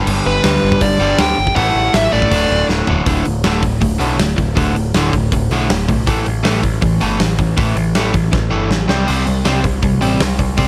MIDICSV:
0, 0, Header, 1, 5, 480
1, 0, Start_track
1, 0, Tempo, 375235
1, 90, Time_signature, 4, 2, 24, 8
1, 13659, End_track
2, 0, Start_track
2, 0, Title_t, "Lead electric guitar"
2, 0, Program_c, 0, 29
2, 339, Note_on_c, 0, 71, 94
2, 1043, Note_on_c, 0, 74, 93
2, 1073, Note_off_c, 0, 71, 0
2, 1512, Note_on_c, 0, 79, 104
2, 1538, Note_off_c, 0, 74, 0
2, 1964, Note_off_c, 0, 79, 0
2, 1989, Note_on_c, 0, 78, 115
2, 2474, Note_on_c, 0, 76, 92
2, 2491, Note_off_c, 0, 78, 0
2, 2715, Note_off_c, 0, 76, 0
2, 2721, Note_on_c, 0, 74, 90
2, 3391, Note_off_c, 0, 74, 0
2, 13659, End_track
3, 0, Start_track
3, 0, Title_t, "Overdriven electric guitar"
3, 0, Program_c, 1, 29
3, 0, Note_on_c, 1, 43, 86
3, 0, Note_on_c, 1, 50, 91
3, 0, Note_on_c, 1, 55, 98
3, 537, Note_off_c, 1, 43, 0
3, 552, Note_on_c, 1, 43, 84
3, 556, Note_off_c, 1, 50, 0
3, 564, Note_off_c, 1, 55, 0
3, 570, Note_on_c, 1, 50, 78
3, 584, Note_on_c, 1, 55, 94
3, 1261, Note_off_c, 1, 55, 0
3, 1264, Note_off_c, 1, 43, 0
3, 1273, Note_off_c, 1, 50, 0
3, 1276, Note_on_c, 1, 55, 81
3, 1292, Note_on_c, 1, 50, 79
3, 1311, Note_on_c, 1, 43, 70
3, 1746, Note_off_c, 1, 55, 0
3, 1753, Note_off_c, 1, 50, 0
3, 1763, Note_off_c, 1, 43, 0
3, 1992, Note_on_c, 1, 45, 92
3, 2012, Note_on_c, 1, 52, 88
3, 2029, Note_on_c, 1, 57, 95
3, 2699, Note_off_c, 1, 57, 0
3, 2703, Note_off_c, 1, 45, 0
3, 2713, Note_off_c, 1, 52, 0
3, 2715, Note_on_c, 1, 57, 91
3, 2736, Note_on_c, 1, 52, 78
3, 2750, Note_on_c, 1, 45, 71
3, 2945, Note_off_c, 1, 57, 0
3, 2947, Note_off_c, 1, 45, 0
3, 2952, Note_on_c, 1, 38, 88
3, 2955, Note_off_c, 1, 52, 0
3, 2970, Note_on_c, 1, 45, 103
3, 2987, Note_on_c, 1, 50, 106
3, 3660, Note_off_c, 1, 50, 0
3, 3663, Note_off_c, 1, 38, 0
3, 3672, Note_off_c, 1, 45, 0
3, 3675, Note_on_c, 1, 50, 80
3, 3698, Note_on_c, 1, 45, 75
3, 3710, Note_on_c, 1, 38, 72
3, 3905, Note_off_c, 1, 38, 0
3, 3905, Note_off_c, 1, 50, 0
3, 3910, Note_off_c, 1, 45, 0
3, 3920, Note_on_c, 1, 38, 81
3, 3926, Note_on_c, 1, 45, 89
3, 3932, Note_on_c, 1, 50, 89
3, 4148, Note_off_c, 1, 38, 0
3, 4150, Note_off_c, 1, 45, 0
3, 4153, Note_off_c, 1, 50, 0
3, 4165, Note_on_c, 1, 38, 62
3, 4167, Note_on_c, 1, 45, 73
3, 4381, Note_off_c, 1, 38, 0
3, 4382, Note_off_c, 1, 45, 0
3, 4398, Note_on_c, 1, 38, 82
3, 4408, Note_on_c, 1, 45, 89
3, 4411, Note_on_c, 1, 50, 95
3, 4623, Note_off_c, 1, 38, 0
3, 4632, Note_off_c, 1, 45, 0
3, 4634, Note_off_c, 1, 50, 0
3, 4638, Note_on_c, 1, 38, 68
3, 4645, Note_on_c, 1, 45, 71
3, 4858, Note_off_c, 1, 38, 0
3, 4861, Note_off_c, 1, 45, 0
3, 4877, Note_on_c, 1, 38, 68
3, 4882, Note_on_c, 1, 45, 85
3, 5097, Note_off_c, 1, 38, 0
3, 5100, Note_off_c, 1, 45, 0
3, 5111, Note_on_c, 1, 38, 88
3, 5120, Note_on_c, 1, 45, 94
3, 5128, Note_on_c, 1, 50, 91
3, 5338, Note_off_c, 1, 38, 0
3, 5349, Note_off_c, 1, 45, 0
3, 5353, Note_off_c, 1, 50, 0
3, 5354, Note_on_c, 1, 38, 78
3, 5362, Note_on_c, 1, 45, 85
3, 5576, Note_off_c, 1, 38, 0
3, 5581, Note_off_c, 1, 45, 0
3, 5601, Note_on_c, 1, 38, 65
3, 5605, Note_on_c, 1, 45, 73
3, 5821, Note_off_c, 1, 38, 0
3, 5822, Note_off_c, 1, 45, 0
3, 5841, Note_on_c, 1, 38, 89
3, 5845, Note_on_c, 1, 45, 82
3, 5850, Note_on_c, 1, 50, 84
3, 6070, Note_off_c, 1, 38, 0
3, 6070, Note_off_c, 1, 45, 0
3, 6075, Note_off_c, 1, 50, 0
3, 6083, Note_on_c, 1, 38, 68
3, 6085, Note_on_c, 1, 45, 71
3, 6302, Note_off_c, 1, 38, 0
3, 6303, Note_off_c, 1, 45, 0
3, 6332, Note_on_c, 1, 38, 92
3, 6335, Note_on_c, 1, 45, 87
3, 6342, Note_on_c, 1, 50, 93
3, 6550, Note_off_c, 1, 38, 0
3, 6553, Note_off_c, 1, 45, 0
3, 6561, Note_off_c, 1, 50, 0
3, 6566, Note_on_c, 1, 38, 71
3, 6568, Note_on_c, 1, 45, 69
3, 6784, Note_off_c, 1, 38, 0
3, 6785, Note_off_c, 1, 45, 0
3, 6813, Note_on_c, 1, 38, 71
3, 6820, Note_on_c, 1, 45, 91
3, 7028, Note_off_c, 1, 38, 0
3, 7031, Note_off_c, 1, 45, 0
3, 7051, Note_on_c, 1, 38, 79
3, 7062, Note_on_c, 1, 45, 94
3, 7066, Note_on_c, 1, 50, 105
3, 7275, Note_off_c, 1, 45, 0
3, 7277, Note_off_c, 1, 38, 0
3, 7284, Note_off_c, 1, 50, 0
3, 7290, Note_on_c, 1, 38, 75
3, 7290, Note_on_c, 1, 45, 78
3, 7507, Note_off_c, 1, 38, 0
3, 7507, Note_off_c, 1, 45, 0
3, 7526, Note_on_c, 1, 38, 66
3, 7537, Note_on_c, 1, 45, 76
3, 7745, Note_off_c, 1, 38, 0
3, 7750, Note_off_c, 1, 45, 0
3, 7763, Note_on_c, 1, 45, 81
3, 7772, Note_on_c, 1, 52, 88
3, 7780, Note_on_c, 1, 57, 95
3, 7989, Note_off_c, 1, 45, 0
3, 7991, Note_off_c, 1, 52, 0
3, 8002, Note_off_c, 1, 57, 0
3, 8004, Note_on_c, 1, 45, 62
3, 8006, Note_on_c, 1, 52, 73
3, 8214, Note_off_c, 1, 45, 0
3, 8222, Note_off_c, 1, 52, 0
3, 8230, Note_on_c, 1, 45, 89
3, 8238, Note_on_c, 1, 52, 94
3, 8245, Note_on_c, 1, 57, 90
3, 8463, Note_off_c, 1, 45, 0
3, 8471, Note_off_c, 1, 52, 0
3, 8475, Note_off_c, 1, 57, 0
3, 8479, Note_on_c, 1, 45, 66
3, 8484, Note_on_c, 1, 52, 78
3, 8702, Note_off_c, 1, 45, 0
3, 8705, Note_off_c, 1, 52, 0
3, 8719, Note_on_c, 1, 45, 74
3, 8724, Note_on_c, 1, 52, 82
3, 8942, Note_off_c, 1, 45, 0
3, 8945, Note_off_c, 1, 52, 0
3, 8961, Note_on_c, 1, 45, 84
3, 8969, Note_on_c, 1, 52, 84
3, 8972, Note_on_c, 1, 57, 97
3, 9185, Note_off_c, 1, 45, 0
3, 9188, Note_off_c, 1, 52, 0
3, 9199, Note_off_c, 1, 57, 0
3, 9200, Note_on_c, 1, 45, 72
3, 9203, Note_on_c, 1, 52, 87
3, 9423, Note_off_c, 1, 45, 0
3, 9425, Note_off_c, 1, 52, 0
3, 9453, Note_on_c, 1, 45, 64
3, 9453, Note_on_c, 1, 52, 71
3, 9665, Note_off_c, 1, 45, 0
3, 9670, Note_off_c, 1, 52, 0
3, 9681, Note_on_c, 1, 45, 86
3, 9687, Note_on_c, 1, 52, 92
3, 9692, Note_on_c, 1, 57, 87
3, 9913, Note_off_c, 1, 45, 0
3, 9916, Note_off_c, 1, 52, 0
3, 9919, Note_off_c, 1, 57, 0
3, 9928, Note_on_c, 1, 45, 62
3, 9936, Note_on_c, 1, 52, 71
3, 10147, Note_off_c, 1, 45, 0
3, 10151, Note_off_c, 1, 52, 0
3, 10172, Note_on_c, 1, 45, 87
3, 10181, Note_on_c, 1, 52, 90
3, 10185, Note_on_c, 1, 57, 92
3, 10392, Note_off_c, 1, 45, 0
3, 10396, Note_off_c, 1, 52, 0
3, 10406, Note_off_c, 1, 57, 0
3, 10407, Note_on_c, 1, 45, 69
3, 10411, Note_on_c, 1, 52, 74
3, 10627, Note_off_c, 1, 45, 0
3, 10629, Note_off_c, 1, 52, 0
3, 10643, Note_on_c, 1, 45, 74
3, 10655, Note_on_c, 1, 52, 75
3, 10865, Note_off_c, 1, 45, 0
3, 10871, Note_off_c, 1, 52, 0
3, 10883, Note_on_c, 1, 45, 85
3, 10892, Note_on_c, 1, 52, 84
3, 10895, Note_on_c, 1, 57, 98
3, 11114, Note_off_c, 1, 45, 0
3, 11119, Note_off_c, 1, 52, 0
3, 11121, Note_off_c, 1, 57, 0
3, 11128, Note_on_c, 1, 45, 75
3, 11136, Note_on_c, 1, 52, 87
3, 11347, Note_off_c, 1, 45, 0
3, 11352, Note_off_c, 1, 52, 0
3, 11363, Note_on_c, 1, 48, 76
3, 11372, Note_on_c, 1, 55, 87
3, 11375, Note_on_c, 1, 60, 100
3, 11583, Note_off_c, 1, 48, 0
3, 11595, Note_off_c, 1, 55, 0
3, 11598, Note_on_c, 1, 48, 85
3, 11600, Note_off_c, 1, 60, 0
3, 11610, Note_on_c, 1, 55, 97
3, 11614, Note_on_c, 1, 60, 82
3, 11829, Note_off_c, 1, 48, 0
3, 11838, Note_off_c, 1, 55, 0
3, 11840, Note_off_c, 1, 60, 0
3, 11844, Note_on_c, 1, 48, 66
3, 11853, Note_on_c, 1, 55, 71
3, 12066, Note_off_c, 1, 48, 0
3, 12070, Note_off_c, 1, 55, 0
3, 12088, Note_on_c, 1, 48, 77
3, 12088, Note_on_c, 1, 55, 86
3, 12099, Note_on_c, 1, 60, 97
3, 12309, Note_off_c, 1, 48, 0
3, 12317, Note_off_c, 1, 55, 0
3, 12322, Note_off_c, 1, 60, 0
3, 12324, Note_on_c, 1, 48, 70
3, 12332, Note_on_c, 1, 55, 77
3, 12545, Note_off_c, 1, 48, 0
3, 12550, Note_off_c, 1, 55, 0
3, 12570, Note_on_c, 1, 48, 72
3, 12574, Note_on_c, 1, 55, 82
3, 12788, Note_off_c, 1, 48, 0
3, 12790, Note_off_c, 1, 55, 0
3, 12805, Note_on_c, 1, 48, 91
3, 12816, Note_on_c, 1, 55, 91
3, 12820, Note_on_c, 1, 60, 90
3, 13036, Note_off_c, 1, 48, 0
3, 13041, Note_off_c, 1, 55, 0
3, 13043, Note_off_c, 1, 60, 0
3, 13063, Note_on_c, 1, 48, 73
3, 13069, Note_on_c, 1, 55, 85
3, 13275, Note_off_c, 1, 48, 0
3, 13278, Note_off_c, 1, 55, 0
3, 13291, Note_on_c, 1, 48, 73
3, 13299, Note_on_c, 1, 55, 72
3, 13509, Note_off_c, 1, 48, 0
3, 13513, Note_off_c, 1, 55, 0
3, 13528, Note_on_c, 1, 48, 77
3, 13534, Note_on_c, 1, 55, 87
3, 13540, Note_on_c, 1, 60, 87
3, 13659, Note_off_c, 1, 48, 0
3, 13659, Note_off_c, 1, 55, 0
3, 13659, Note_off_c, 1, 60, 0
3, 13659, End_track
4, 0, Start_track
4, 0, Title_t, "Picked electric bass"
4, 0, Program_c, 2, 34
4, 89, Note_on_c, 2, 31, 100
4, 254, Note_off_c, 2, 31, 0
4, 333, Note_on_c, 2, 31, 94
4, 496, Note_off_c, 2, 31, 0
4, 572, Note_on_c, 2, 38, 104
4, 735, Note_off_c, 2, 38, 0
4, 811, Note_on_c, 2, 31, 95
4, 974, Note_off_c, 2, 31, 0
4, 1042, Note_on_c, 2, 31, 89
4, 1209, Note_off_c, 2, 31, 0
4, 1284, Note_on_c, 2, 31, 91
4, 1450, Note_off_c, 2, 31, 0
4, 1536, Note_on_c, 2, 38, 89
4, 1697, Note_off_c, 2, 38, 0
4, 1776, Note_on_c, 2, 31, 81
4, 1937, Note_off_c, 2, 31, 0
4, 2001, Note_on_c, 2, 33, 104
4, 2167, Note_off_c, 2, 33, 0
4, 2240, Note_on_c, 2, 33, 94
4, 2406, Note_off_c, 2, 33, 0
4, 2484, Note_on_c, 2, 33, 97
4, 2649, Note_off_c, 2, 33, 0
4, 2728, Note_on_c, 2, 33, 87
4, 2891, Note_off_c, 2, 33, 0
4, 2966, Note_on_c, 2, 26, 91
4, 3130, Note_off_c, 2, 26, 0
4, 3200, Note_on_c, 2, 26, 85
4, 3367, Note_off_c, 2, 26, 0
4, 3432, Note_on_c, 2, 26, 95
4, 3601, Note_off_c, 2, 26, 0
4, 3687, Note_on_c, 2, 26, 86
4, 3851, Note_off_c, 2, 26, 0
4, 3926, Note_on_c, 2, 26, 97
4, 4136, Note_off_c, 2, 26, 0
4, 4175, Note_on_c, 2, 26, 87
4, 4380, Note_off_c, 2, 26, 0
4, 4411, Note_on_c, 2, 26, 93
4, 4619, Note_off_c, 2, 26, 0
4, 4645, Note_on_c, 2, 26, 88
4, 4856, Note_off_c, 2, 26, 0
4, 4883, Note_on_c, 2, 26, 86
4, 5095, Note_off_c, 2, 26, 0
4, 5123, Note_on_c, 2, 35, 75
4, 5335, Note_off_c, 2, 35, 0
4, 5357, Note_on_c, 2, 26, 86
4, 5572, Note_off_c, 2, 26, 0
4, 5609, Note_on_c, 2, 26, 73
4, 5819, Note_off_c, 2, 26, 0
4, 5850, Note_on_c, 2, 26, 96
4, 6060, Note_off_c, 2, 26, 0
4, 6083, Note_on_c, 2, 26, 82
4, 6296, Note_off_c, 2, 26, 0
4, 6319, Note_on_c, 2, 26, 92
4, 6534, Note_off_c, 2, 26, 0
4, 6569, Note_on_c, 2, 26, 84
4, 6780, Note_off_c, 2, 26, 0
4, 6809, Note_on_c, 2, 26, 87
4, 7020, Note_off_c, 2, 26, 0
4, 7049, Note_on_c, 2, 35, 79
4, 7260, Note_off_c, 2, 35, 0
4, 7295, Note_on_c, 2, 26, 91
4, 7504, Note_off_c, 2, 26, 0
4, 7529, Note_on_c, 2, 35, 77
4, 7741, Note_off_c, 2, 35, 0
4, 7769, Note_on_c, 2, 33, 97
4, 7981, Note_off_c, 2, 33, 0
4, 8023, Note_on_c, 2, 33, 91
4, 8229, Note_off_c, 2, 33, 0
4, 8266, Note_on_c, 2, 33, 89
4, 8471, Note_off_c, 2, 33, 0
4, 8490, Note_on_c, 2, 33, 83
4, 8702, Note_off_c, 2, 33, 0
4, 8730, Note_on_c, 2, 33, 93
4, 8942, Note_off_c, 2, 33, 0
4, 8987, Note_on_c, 2, 31, 85
4, 9192, Note_off_c, 2, 31, 0
4, 9226, Note_on_c, 2, 33, 80
4, 9431, Note_off_c, 2, 33, 0
4, 9449, Note_on_c, 2, 33, 82
4, 9662, Note_off_c, 2, 33, 0
4, 9692, Note_on_c, 2, 33, 86
4, 9903, Note_off_c, 2, 33, 0
4, 9928, Note_on_c, 2, 33, 87
4, 10141, Note_off_c, 2, 33, 0
4, 10188, Note_on_c, 2, 33, 83
4, 10392, Note_off_c, 2, 33, 0
4, 10414, Note_on_c, 2, 33, 82
4, 10624, Note_off_c, 2, 33, 0
4, 10660, Note_on_c, 2, 33, 87
4, 10868, Note_off_c, 2, 33, 0
4, 10900, Note_on_c, 2, 31, 80
4, 11108, Note_off_c, 2, 31, 0
4, 11134, Note_on_c, 2, 33, 86
4, 11345, Note_off_c, 2, 33, 0
4, 11381, Note_on_c, 2, 36, 82
4, 11588, Note_off_c, 2, 36, 0
4, 11631, Note_on_c, 2, 36, 88
4, 11834, Note_off_c, 2, 36, 0
4, 11866, Note_on_c, 2, 36, 92
4, 12072, Note_off_c, 2, 36, 0
4, 12105, Note_on_c, 2, 36, 90
4, 12311, Note_off_c, 2, 36, 0
4, 12336, Note_on_c, 2, 36, 82
4, 12545, Note_off_c, 2, 36, 0
4, 12578, Note_on_c, 2, 36, 88
4, 12787, Note_off_c, 2, 36, 0
4, 12818, Note_on_c, 2, 33, 78
4, 13027, Note_off_c, 2, 33, 0
4, 13067, Note_on_c, 2, 36, 89
4, 13272, Note_off_c, 2, 36, 0
4, 13297, Note_on_c, 2, 36, 78
4, 13506, Note_off_c, 2, 36, 0
4, 13532, Note_on_c, 2, 36, 90
4, 13659, Note_off_c, 2, 36, 0
4, 13659, End_track
5, 0, Start_track
5, 0, Title_t, "Drums"
5, 89, Note_on_c, 9, 49, 108
5, 217, Note_off_c, 9, 49, 0
5, 559, Note_on_c, 9, 46, 64
5, 562, Note_on_c, 9, 38, 109
5, 687, Note_off_c, 9, 46, 0
5, 690, Note_off_c, 9, 38, 0
5, 920, Note_on_c, 9, 36, 93
5, 1035, Note_on_c, 9, 46, 62
5, 1040, Note_off_c, 9, 36, 0
5, 1040, Note_on_c, 9, 36, 96
5, 1163, Note_off_c, 9, 46, 0
5, 1168, Note_off_c, 9, 36, 0
5, 1514, Note_on_c, 9, 46, 61
5, 1517, Note_on_c, 9, 38, 116
5, 1642, Note_off_c, 9, 46, 0
5, 1645, Note_off_c, 9, 38, 0
5, 1879, Note_on_c, 9, 36, 88
5, 1999, Note_on_c, 9, 46, 61
5, 2000, Note_off_c, 9, 36, 0
5, 2000, Note_on_c, 9, 36, 96
5, 2127, Note_off_c, 9, 46, 0
5, 2128, Note_off_c, 9, 36, 0
5, 2479, Note_on_c, 9, 46, 57
5, 2482, Note_on_c, 9, 38, 102
5, 2607, Note_off_c, 9, 46, 0
5, 2609, Note_off_c, 9, 38, 0
5, 2841, Note_on_c, 9, 36, 85
5, 2962, Note_off_c, 9, 36, 0
5, 2962, Note_on_c, 9, 36, 94
5, 2962, Note_on_c, 9, 46, 60
5, 3090, Note_off_c, 9, 36, 0
5, 3090, Note_off_c, 9, 46, 0
5, 3446, Note_on_c, 9, 38, 65
5, 3574, Note_off_c, 9, 38, 0
5, 3676, Note_on_c, 9, 43, 101
5, 3804, Note_off_c, 9, 43, 0
5, 3917, Note_on_c, 9, 46, 78
5, 3920, Note_on_c, 9, 36, 114
5, 4045, Note_off_c, 9, 46, 0
5, 4048, Note_off_c, 9, 36, 0
5, 4162, Note_on_c, 9, 46, 53
5, 4290, Note_off_c, 9, 46, 0
5, 4399, Note_on_c, 9, 46, 66
5, 4401, Note_on_c, 9, 38, 101
5, 4527, Note_off_c, 9, 46, 0
5, 4529, Note_off_c, 9, 38, 0
5, 4639, Note_on_c, 9, 46, 61
5, 4640, Note_on_c, 9, 36, 89
5, 4767, Note_off_c, 9, 46, 0
5, 4768, Note_off_c, 9, 36, 0
5, 4881, Note_on_c, 9, 36, 100
5, 4883, Note_on_c, 9, 46, 74
5, 5009, Note_off_c, 9, 36, 0
5, 5011, Note_off_c, 9, 46, 0
5, 5128, Note_on_c, 9, 46, 58
5, 5256, Note_off_c, 9, 46, 0
5, 5364, Note_on_c, 9, 46, 69
5, 5367, Note_on_c, 9, 38, 109
5, 5492, Note_off_c, 9, 46, 0
5, 5495, Note_off_c, 9, 38, 0
5, 5603, Note_on_c, 9, 36, 86
5, 5608, Note_on_c, 9, 46, 51
5, 5731, Note_off_c, 9, 36, 0
5, 5736, Note_off_c, 9, 46, 0
5, 5844, Note_on_c, 9, 36, 110
5, 5847, Note_on_c, 9, 46, 74
5, 5972, Note_off_c, 9, 36, 0
5, 5974, Note_off_c, 9, 46, 0
5, 6091, Note_on_c, 9, 46, 52
5, 6219, Note_off_c, 9, 46, 0
5, 6323, Note_on_c, 9, 46, 64
5, 6325, Note_on_c, 9, 38, 94
5, 6451, Note_off_c, 9, 46, 0
5, 6453, Note_off_c, 9, 38, 0
5, 6565, Note_on_c, 9, 36, 86
5, 6567, Note_on_c, 9, 46, 56
5, 6693, Note_off_c, 9, 36, 0
5, 6695, Note_off_c, 9, 46, 0
5, 6806, Note_on_c, 9, 36, 107
5, 6808, Note_on_c, 9, 46, 65
5, 6934, Note_off_c, 9, 36, 0
5, 6936, Note_off_c, 9, 46, 0
5, 7048, Note_on_c, 9, 46, 54
5, 7176, Note_off_c, 9, 46, 0
5, 7291, Note_on_c, 9, 46, 73
5, 7293, Note_on_c, 9, 38, 110
5, 7419, Note_off_c, 9, 46, 0
5, 7421, Note_off_c, 9, 38, 0
5, 7528, Note_on_c, 9, 36, 82
5, 7534, Note_on_c, 9, 46, 60
5, 7656, Note_off_c, 9, 36, 0
5, 7662, Note_off_c, 9, 46, 0
5, 7768, Note_on_c, 9, 36, 108
5, 7770, Note_on_c, 9, 46, 71
5, 7896, Note_off_c, 9, 36, 0
5, 7898, Note_off_c, 9, 46, 0
5, 8009, Note_on_c, 9, 46, 58
5, 8137, Note_off_c, 9, 46, 0
5, 8249, Note_on_c, 9, 46, 78
5, 8251, Note_on_c, 9, 38, 97
5, 8377, Note_off_c, 9, 46, 0
5, 8379, Note_off_c, 9, 38, 0
5, 8484, Note_on_c, 9, 46, 64
5, 8487, Note_on_c, 9, 36, 83
5, 8611, Note_off_c, 9, 46, 0
5, 8615, Note_off_c, 9, 36, 0
5, 8724, Note_on_c, 9, 46, 75
5, 8727, Note_on_c, 9, 36, 106
5, 8852, Note_off_c, 9, 46, 0
5, 8855, Note_off_c, 9, 36, 0
5, 8966, Note_on_c, 9, 46, 54
5, 9093, Note_off_c, 9, 46, 0
5, 9208, Note_on_c, 9, 46, 75
5, 9210, Note_on_c, 9, 38, 100
5, 9336, Note_off_c, 9, 46, 0
5, 9338, Note_off_c, 9, 38, 0
5, 9445, Note_on_c, 9, 46, 55
5, 9450, Note_on_c, 9, 36, 83
5, 9573, Note_off_c, 9, 46, 0
5, 9577, Note_off_c, 9, 36, 0
5, 9691, Note_on_c, 9, 46, 77
5, 9692, Note_on_c, 9, 36, 112
5, 9818, Note_off_c, 9, 46, 0
5, 9820, Note_off_c, 9, 36, 0
5, 9935, Note_on_c, 9, 46, 55
5, 10063, Note_off_c, 9, 46, 0
5, 10170, Note_on_c, 9, 46, 69
5, 10172, Note_on_c, 9, 38, 104
5, 10298, Note_off_c, 9, 46, 0
5, 10300, Note_off_c, 9, 38, 0
5, 10415, Note_on_c, 9, 36, 92
5, 10415, Note_on_c, 9, 46, 56
5, 10543, Note_off_c, 9, 36, 0
5, 10543, Note_off_c, 9, 46, 0
5, 10656, Note_on_c, 9, 36, 112
5, 10657, Note_on_c, 9, 38, 57
5, 10784, Note_off_c, 9, 36, 0
5, 10785, Note_off_c, 9, 38, 0
5, 11139, Note_on_c, 9, 38, 88
5, 11267, Note_off_c, 9, 38, 0
5, 11376, Note_on_c, 9, 38, 90
5, 11504, Note_off_c, 9, 38, 0
5, 11614, Note_on_c, 9, 46, 76
5, 11614, Note_on_c, 9, 55, 79
5, 11742, Note_off_c, 9, 46, 0
5, 11742, Note_off_c, 9, 55, 0
5, 11857, Note_on_c, 9, 46, 56
5, 11985, Note_off_c, 9, 46, 0
5, 12091, Note_on_c, 9, 46, 75
5, 12093, Note_on_c, 9, 38, 98
5, 12219, Note_off_c, 9, 46, 0
5, 12221, Note_off_c, 9, 38, 0
5, 12332, Note_on_c, 9, 46, 62
5, 12333, Note_on_c, 9, 36, 90
5, 12460, Note_off_c, 9, 46, 0
5, 12461, Note_off_c, 9, 36, 0
5, 12569, Note_on_c, 9, 46, 75
5, 12571, Note_on_c, 9, 36, 104
5, 12697, Note_off_c, 9, 46, 0
5, 12699, Note_off_c, 9, 36, 0
5, 12817, Note_on_c, 9, 46, 59
5, 12945, Note_off_c, 9, 46, 0
5, 13052, Note_on_c, 9, 46, 76
5, 13055, Note_on_c, 9, 38, 98
5, 13180, Note_off_c, 9, 46, 0
5, 13183, Note_off_c, 9, 38, 0
5, 13291, Note_on_c, 9, 36, 83
5, 13295, Note_on_c, 9, 46, 59
5, 13419, Note_off_c, 9, 36, 0
5, 13423, Note_off_c, 9, 46, 0
5, 13531, Note_on_c, 9, 36, 105
5, 13531, Note_on_c, 9, 46, 77
5, 13659, Note_off_c, 9, 36, 0
5, 13659, Note_off_c, 9, 46, 0
5, 13659, End_track
0, 0, End_of_file